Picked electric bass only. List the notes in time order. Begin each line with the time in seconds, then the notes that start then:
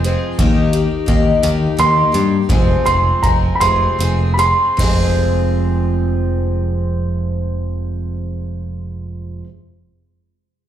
Already playing: F1
0.39 D#2
1.08 D#2
1.43 D#2
1.79 D#2
2.15 G2
2.49 F1
2.86 F1
3.23 F1
3.61 F1
3.99 F1
4.78 F1